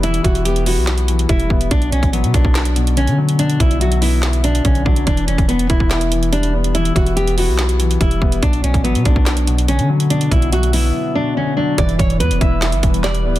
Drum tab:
HH |xxxxxxo-xxxxxx-x|xxxxxxx-xxxxxx-x|xxxxxxo-xxxxxx-x|xxxxxxx-xxxxxx-x|
CP |--------x-------|--------x-------|--------x-------|--------x-------|
SD |--------o-------|--------o-------|--------o-------|--------o-------|
BD |--o---------o-o-|o--o--oo--------|--o---------o-o-|o--o--oo--------|

HH |xxxxxxo-xxxxxx-x|xxxxxxx-xxxxxx-x|xxxxxxo---------|xxxxxxx-xxxxxx-x|
CP |--------x-------|--------x-------|----------------|--------x---x---|
SD |--------o-------|--------o-------|----------------|--------o---o---|
BD |--o---------o-o-|o--o--oo--------|--o-------------|o-o---o---o-----|